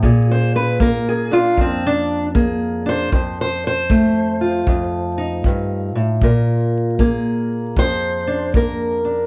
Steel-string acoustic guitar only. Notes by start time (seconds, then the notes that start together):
0.03 A#2 G#4
0.31 C5
0.56 B4
0.80 A#3 A#4
1.09 G#4
1.31 D4 F4
1.58 F2 C4
1.86 D4
2.35 A#3 G#4
2.86 D4 C5
3.13 F2 C5
3.41 C5
3.67 C5
3.90 A3
4.41 F4
4.67 F2
5.18 D#4
5.45 G2
5.95 A2
6.23 A#2 A#4
7.00 A#3 G#4
7.77 F2 C5
8.27 D4
8.55 A#3 A#4
9.05 D4